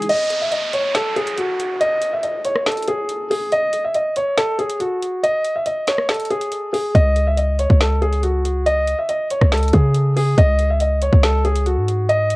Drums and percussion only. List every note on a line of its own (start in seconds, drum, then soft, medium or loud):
0.02 closed hi-hat medium
0.09 closed hi-hat medium
0.09 crash medium
0.30 closed hi-hat medium
0.52 closed hi-hat medium
0.73 closed hi-hat medium
0.95 snare loud
0.95 closed hi-hat medium
1.16 closed hi-hat soft
1.27 closed hi-hat medium
1.37 closed hi-hat medium
1.60 closed hi-hat medium
1.81 closed hi-hat medium
2.02 closed hi-hat medium
2.23 closed hi-hat medium
2.45 closed hi-hat medium
2.55 cross-stick medium
2.66 snare loud
2.66 closed hi-hat medium
2.72 closed hi-hat medium
2.77 closed hi-hat medium
2.82 closed hi-hat medium
2.87 closed hi-hat medium
3.09 closed hi-hat medium
3.31 open hi-hat medium
3.52 closed hi-hat medium
3.73 closed hi-hat medium
3.94 closed hi-hat medium
4.16 closed hi-hat medium
4.38 snare loud
4.38 closed hi-hat medium
4.59 closed hi-hat soft
4.70 closed hi-hat medium
4.80 closed hi-hat medium
5.02 closed hi-hat medium
5.24 closed hi-hat medium
5.44 closed hi-hat medium
5.66 closed hi-hat medium
5.87 snare loud
5.87 closed hi-hat medium
5.98 cross-stick medium
6.09 snare loud
6.09 closed hi-hat soft
6.15 closed hi-hat medium
6.20 closed hi-hat medium
6.25 closed hi-hat medium
6.31 closed hi-hat soft
6.41 closed hi-hat medium
6.52 closed hi-hat medium
6.74 open hi-hat medium
6.95 kick loud
6.95 closed hi-hat medium
7.16 closed hi-hat medium
7.37 closed hi-hat medium
7.59 closed hi-hat medium
7.70 kick medium
7.81 snare loud
7.81 closed hi-hat medium
8.02 closed hi-hat soft
8.13 closed hi-hat medium
8.23 closed hi-hat medium
8.45 closed hi-hat medium
8.66 closed hi-hat medium
8.87 closed hi-hat medium
9.09 closed hi-hat medium
9.30 closed hi-hat medium
9.41 kick medium
9.41 cross-stick medium
9.52 snare loud
9.52 closed hi-hat medium
9.57 closed hi-hat medium
9.63 closed hi-hat medium
9.68 closed hi-hat medium
9.73 kick medium
9.73 closed hi-hat medium
9.95 closed hi-hat medium
10.17 open hi-hat medium
10.38 kick loud
10.38 closed hi-hat medium
10.59 closed hi-hat medium
10.80 closed hi-hat medium
11.02 closed hi-hat medium
11.13 kick medium
11.23 snare loud
11.23 closed hi-hat medium
11.45 closed hi-hat soft
11.56 closed hi-hat medium
11.66 closed hi-hat medium
11.88 closed hi-hat medium
12.09 closed hi-hat medium
12.30 closed hi-hat medium